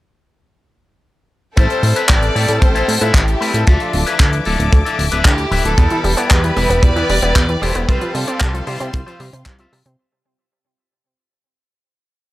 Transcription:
1.56 A1 G3 C4 E4 A4 C5 E5 G5 A5, kick, closed hi-hat
1.70 closed hi-hat
1.83 A2, open hi-hat
1.96 G3 C4 E4 B4, closed hi-hat
2.09 A1 A4 D5, kick, clap, closed hi-hat
2.23 closed hi-hat
2.35 A2 G3 C4 E4 A4, open hi-hat
2.48 A2, closed hi-hat
2.62 A1 A4 C5, kick, closed hi-hat
2.75 G3 C4 E4 A4, closed hi-hat
2.88 A2, open hi-hat
3.01 A2 G3 C4 E4 F4 A4 B4, closed hi-hat
3.14 A1 E4 G4, kick, clap, closed hi-hat
3.28 closed hi-hat
3.41 A2 G3 C4 E4 B4, open hi-hat
3.54 A2 F4 A4, closed hi-hat
3.67 D2 F3 D4 F4 A4 E5 D6, kick, closed hi-hat
3.80 closed hi-hat
3.93 D1, open hi-hat
4.06 F3 D4 E4 B4, closed hi-hat
4.20 D2, kick, clap, closed hi-hat
4.33 closed hi-hat
4.45 D1 F3 D4 E4 A4, open hi-hat
4.59 D1, closed hi-hat
4.72 D2, kick, closed hi-hat
4.85 F3 D4 E4 A4, closed hi-hat
4.99 D1, open hi-hat
5.12 D1 F3 D4 E4 B4, closed hi-hat
5.25 D2 E4 G4, kick, clap, closed hi-hat
5.38 closed hi-hat
5.51 D1 F3 D4 E4 B4, open hi-hat
5.65 D1 E4 A4, closed hi-hat
5.77 E2 B2 G3 B3 E4 G4 B4 B5, kick, closed hi-hat
5.90 E3, closed hi-hat
6.04 E1 G3, open hi-hat
6.17 G3 B3 E4 D5, closed hi-hat
6.30 E2 B2 G4 B4, kick, clap, closed hi-hat
6.44 E3, closed hi-hat
6.56 E1 G3 B3 E4 B4, open hi-hat
6.70 E1 B3, closed hi-hat
6.83 E2 B2 B4 D5, kick, closed hi-hat
6.96 E3 G3 B3 E4 B4, closed hi-hat
7.09 E1 G3, open hi-hat
7.22 E1 G3 B3 E4 D5, closed hi-hat
7.36 E2 B2, kick, clap, closed hi-hat
7.49 E3, closed hi-hat
7.62 E1 G3 B3 E4 A4 C5 D5, open hi-hat
7.75 E1 B3, closed hi-hat
7.88 C2 C3 G3 C4 F4 G4 B4 C5 F5 C6, kick, closed hi-hat
8.01 F3, closed hi-hat
8.15 C3 G3 F4 A4, open hi-hat
8.27 G3 C4 F4 D5, closed hi-hat
8.40 C2 C3, kick, clap, closed hi-hat
8.54 F3, closed hi-hat
8.67 C3 G3 C4 E4 F4 G4 C5, open hi-hat
8.80 C3 C4, closed hi-hat
8.93 C2 C3 C4 F4, kick, closed hi-hat
9.06 F3 G3 C4 F4 C5, closed hi-hat
9.20 C3 G3, open hi-hat
9.33 C3 C4, closed hi-hat
9.46 C2 C3, kick, clap, closed hi-hat
9.59 F3 G3 C4 F4 E5, closed hi-hat
9.73 C3 G3, open hi-hat
9.86 C3 C4, closed hi-hat

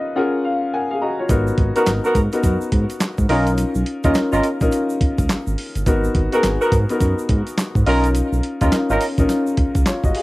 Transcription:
Already playing: C#4 D#4 F4 A#4 B4 D#5
0.16 C#4 F4 G#4 A#4 F#5
0.45 F5
0.74 A#4 F#5 G#5
0.91 G#4 F5
1.02 F#4 D#5 A#5
1.19 F4 C#5
1.29 G#1 B3 D#4 F#4 A#4, kick, closed hi-hat, shaker
1.47 shaker
1.58 G#1, kick, closed hi-hat
1.75 B3 D#4 F#4 A#4, closed hi-hat, shaker
1.86 G#1, snare, clap, closed hi-hat, shaker
2.04 B3 F#4 A#4, shaker
2.15 G#2, kick, closed hi-hat, shaker
2.33 B3 D#4 F#4 A#4, closed hi-hat, shaker
2.43 F#2, kick, closed hi-hat, shaker
2.61 shaker
2.72 G#2, kick, closed hi-hat
2.90 closed hi-hat, shaker
3.00 snare, clap, closed hi-hat, shaker
3.18 G#2, kick, shaker
3.29 B1 C#4 D#4 F4 A#4, open hi-hat
3.47 closed hi-hat, shaker
3.58 closed hi-hat, shaker
3.75 B1, shaker
3.86 closed hi-hat
4.04 D#2 C#4 D#4 F4 A#4, kick, closed hi-hat, shaker
4.14 snare, clap, closed hi-hat, shaker
4.32 G#1 C#4 D#4 F4 A#4, shaker
4.43 closed hi-hat, shaker
4.61 A#1 C#4 D#4 F4 A#4, kick, closed hi-hat, shaker
4.72 closed hi-hat, shaker
4.90 shaker
5.01 C#2, kick, closed hi-hat
5.18 C#2, kick, closed hi-hat, shaker
5.29 G#1, snare, clap, closed hi-hat, shaker
5.47 G#1, shaker
5.58 open hi-hat
5.75 G1, closed hi-hat, shaker
5.86 G#1 B3 D#4 F#4 A#4, kick, closed hi-hat, shaker
6.04 shaker
6.15 G#1, kick, closed hi-hat
6.32 B3 D#4 F#4 G#4 A#4, closed hi-hat, shaker
6.43 G#1, snare, clap, closed hi-hat, shaker
6.61 B3 F#4 A#4, shaker
6.72 G#2, kick, closed hi-hat, shaker
6.89 B3 D#4 F#4 A#4, closed hi-hat, shaker
7.00 F#2, kick, closed hi-hat, shaker
7.19 shaker
7.29 G#2, kick, closed hi-hat
7.47 closed hi-hat, shaker
7.58 snare, clap, closed hi-hat, shaker
7.75 G#2, kick, shaker
7.86 B1 C#4 D#4 F4 A#4, open hi-hat
8.04 closed hi-hat, shaker
8.15 closed hi-hat, shaker
8.33 B1, shaker
8.43 closed hi-hat
8.61 D#2 C#4 D#4 F4 A#4, kick, closed hi-hat, shaker
8.72 snare, clap, closed hi-hat, shaker
8.90 G#1 C#4 D#4 F4 A#4, shaker
9.01 open hi-hat, shaker
9.18 A#1 C#4 D#4 F4 A#4, kick, closed hi-hat, shaker
9.29 snare, closed hi-hat, shaker
9.47 shaker
9.57 C#2, kick, closed hi-hat
9.75 C#2, kick, closed hi-hat, shaker
9.86 G#1 F4 C#5, snare, clap, closed hi-hat, shaker
10.04 G#1 F#4 D#5, kick, shaker
10.15 G#4 F5, open hi-hat

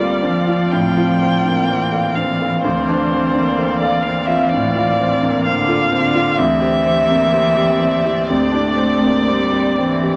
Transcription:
Already playing: D2 G3 A#3 C4 F4 A4 D5 F5
0.22 F3 C4 D4
0.47 F4
0.72 A2 D4 G5
0.97 F4
1.22 C4
1.45 A#3 D4
1.69 E3 C4
1.93 A4 F5
2.15 C4 D4 F5
2.41 A4 F5
2.63 D2 C4 D4 C5 D5 F5
2.88 D4 C5
3.11 C4 C5
3.35 A#3 D4
3.58 C4 A4
3.79 A4 D5 F5
4.02 D4 F5
4.07 C4
4.26 F4 E5
4.31 F5
4.49 D4 D5
4.54 A2
4.75 F4 F5
5.01 C4
5.22 A#3 D4
5.45 D3 C4 F5
5.68 F4 A4
5.92 D3 C4 D4
6.15 F4 A4
6.37 D2 E3 C4 G4 D5 E5
6.60 G4 C5
6.85 C4 C5
7.07 A#3 C4
7.32 C4 G4
7.55 G4
7.79 C4
8.04 E4 G4
8.27 D2 A3 C4 D5
8.52 D4 E4
8.77 C4
9.01 A#3 C4
9.27 G3 C4
9.52 G4
9.78 E3 C4
10.03 G4

